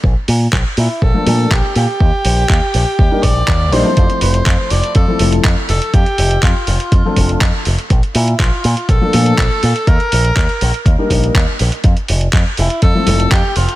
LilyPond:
<<
  \new Staff \with { instrumentName = "Tenor saxophone" } { \time 4/4 \key f \major \tempo 4 = 122 r4. e'8 a'4 g'8 g'8~ | g'2~ g'8 d''4 c''8~ | c''8 c''4 d''8 a'4 r8 a'8 | g'4 f'2 r4 |
r8 e'8 f'4 a'2 | bes'2 r2 | r4. e'8 a'4 g'8 f'8 | }
  \new Staff \with { instrumentName = "Grand piano" } { \time 4/4 \key f \major r2 r16 <f a bes d' a'>16 <f a bes d' a'>8 r4 | r2 r16 <g bes d' ees' bes'>16 r4 <g bes d' ees' c''>16 <f a c' e' c''>16~ | <f a c' e' c''>2~ <f a c' e' c''>16 <f a c' e' a'>16 <f a c' e' a'>8 r4 | r2 r16 <f a c' d' a'>16 <f a c' d' a'>8 r4 |
r2 r16 <f a bes d' a'>16 <f a bes d' a'>8 r4 | r2 r16 <g bes d' ees' bes'>16 <g bes d' ees' bes'>8 r4 | r2 r16 <f a c' e' a'>16 <f a c' e' a'>8 r4 | }
  \new Staff \with { instrumentName = "Picked electric bass" } { \clef bass \time 4/4 \key f \major bes,,8 bes,8 bes,,8 bes,8 bes,,8 bes,8 bes,,8 bes,8 | ees,8 bes,,8 ees,8 bes,,8 ees,8 bes,,8 ees,8 bes,,8 | f,8 f,,8 f,8 f,,8 f,8 f,,8 f,8 f,,8 | f,8 f,,8 f,8 f,,8 f,8 f,,8 f,8 f,,8 |
bes,,8 bes,8 bes,,8 bes,8 bes,,8 bes,8 bes,,8 bes,8 | ees,8 bes,,8 ees,8 bes,,8 ees,8 bes,,8 ees,8 bes,,8 | f,8 f,,8 f,8 f,,8 f,8 f,,8 f,8 f,,8 | }
  \new DrumStaff \with { instrumentName = "Drums" } \drummode { \time 4/4 bd8 hho8 <hc bd>8 hho8 bd8 hho8 <hc bd>8 hho8 | bd8 hho8 <hc bd>8 hho8 bd8 <hho bd>8 <hc bd>8 hho8 | <hh bd>16 hh16 hho16 hh16 <hc hh bd>8 hho16 hh16 <hh bd>8 hho16 hh16 <hc hh bd>8 hho16 hh16 | <hh bd>16 hh16 hho16 hh16 <hc hh bd>8 hho16 hh16 <hh bd>8 <hho bd>16 hh16 <hc hh bd>8 hho16 hh16 |
<hh bd>16 hh16 hho16 hh16 <hc hh bd>8 hho16 hh16 <hh bd>8 hho16 hh16 <hc hh bd>8 hho16 hh16 | <hh bd>16 hh16 hho16 hh16 <hc hh bd>16 hh16 hho16 hh16 <hh bd>8 <hho bd>16 hh16 <hc hh bd>8 hho16 hh16 | <hh bd>16 hh16 hho16 hh16 <hc hh bd>8 hho16 hh16 <hh bd>8 hho16 hh16 <hc hh bd>8 hho16 hh16 | }
>>